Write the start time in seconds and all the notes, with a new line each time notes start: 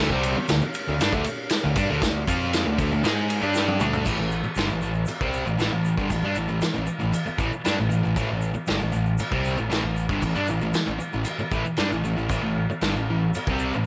0.10 C2 C3 G3 C4, kick
0.23 ride, shaker
0.37 muted distorted electric guitar stroke, muted picked electric bass stroke
0.48 D2 D3 A3, snare, ride, shaker
0.62 muted distorted electric guitar stroke, muted picked electric bass stroke, shaker
0.74 ride, shaker
0.88 D2 D3 A3
1.01 G2 G3 D4, snare, ride, shaker
1.13 D2 D3 A3, kick, shaker
1.24 muted distorted electric guitar stroke, muted picked electric bass stroke, ride, shaker
1.49 snare, ride, shaker
1.64 D2 D3 A3
1.76 G2 G3 D4, kick, ride, shaker
1.90 D2 D3 A3
2.02 D2 D3 A3, kick, snare, ride, shaker
2.27 F2 F3 C4 F4, kick, ride, shaker
2.53 snare, ride, shaker
2.65 D2 D3 A3
2.78 D2 D3 A3, kick, ride, shaker
2.92 D2 D3 A3, shaker
3.04 G#2 G#3 D#4 G#4, snare, ride, shaker
3.18 shaker
3.30 ride, shaker
3.42 G2 G3 D4 G4, shaker
3.54 snare, shaker
3.68 high tom, shaker
3.80 D2 D3 A3 D4, mid tom, shaker
3.93 floor tom, shaker
4.05 A1 A2 E3, kick, crash, shaker
4.19 A1 A2 E3
4.31 shaker
4.43 muted distorted electric guitar stroke, muted picked electric bass stroke, shaker
4.55 G1 G2 D3, snare, crash, shaker
4.69 A1 A2 E3, shaker
4.82 A1 A2 E3, shaker
4.94 shaker
5.06 muted distorted electric guitar stroke, crash, shaker
5.21 C2 C3 G3 C4, kick, shaker
5.33 shaker
5.46 A1 A2 E3, shaker
5.59 A1 A2 E3, snare, crash, shaker
5.73 A1 A2 E3
5.85 shaker
5.97 G1 G2 D3, kick, shaker
6.10 A1 A2 E3, kick, crash, shaker
6.23 G2 G3 D4
6.35 A1 A2 E3, shaker
6.48 A1 A2 E3, shaker
6.61 muted distorted electric guitar stroke, muted picked electric bass stroke, snare, crash, shaker
6.73 A1 A2 E3, shaker
6.86 muted distorted electric guitar stroke, shaker
6.99 A1 A2 E3, shaker
7.13 muted distorted electric guitar stroke, crash, shaker
7.26 muted distorted electric guitar stroke, muted picked electric bass stroke, shaker
7.38 A1 A2 E3, kick, shaker
7.53 muted distorted electric guitar stroke, shaker
7.65 G2 G3 D4, snare, crash, shaker
7.78 A1 A2 E3
7.89 A1 A2 E3, shaker
8.03 A1 A2 E3, shaker
8.16 A1 A2 E3, kick, crash, shaker
8.30 A1 A2 E3
8.42 shaker
8.54 muted distorted electric guitar stroke, shaker
8.67 G1 G2 D3, snare, crash, shaker
8.80 A1 A2 E3, shaker
8.92 A1 A2 E3, shaker
9.05 shaker
9.18 muted distorted electric guitar stroke, crash, shaker
9.31 C2 C3 G3 C4, kick, shaker
9.45 shaker
9.58 A1 A2 E3, shaker
9.69 A1 A2 E3, snare, crash, shaker
9.84 A1 A2 E3
9.97 shaker
10.09 G1 G2 D3, kick, shaker
10.22 A1 A2 E3, kick, crash, shaker
10.35 G2 G3 D4, shaker
10.47 A1 A2 E3, shaker
10.61 A1 A2 E3, shaker
10.74 muted distorted electric guitar stroke, snare, crash, shaker
10.86 A1 A2 E3, shaker
10.99 muted distorted electric guitar stroke, shaker
11.12 A1 A2 E3, shaker
11.25 muted distorted electric guitar stroke, crash, shaker
11.39 muted distorted electric guitar stroke, muted picked electric bass stroke, shaker
11.51 A1 A2 E3, kick, shaker
11.65 muted distorted electric guitar stroke, shaker
11.77 G2 G3 D4, snare, crash, shaker
11.91 A1 A2 E3, shaker
12.04 A1 A2 E3, shaker
12.17 A1 A2 E3, shaker
12.29 A1 A2 E3, kick, crash, shaker
12.42 A1 A2 E3
12.70 muted picked electric bass stroke, muted distorted electric guitar stroke, shaker
12.81 G1 G2 D3, snare, crash, shaker
12.96 A1 A2 E3, shaker
13.10 A1 A2 E3
13.34 muted distorted electric guitar stroke, crash, shaker
13.47 C2 C3 G3 C4, kick, shaker
13.59 shaker
13.73 A1 A2 E3, shaker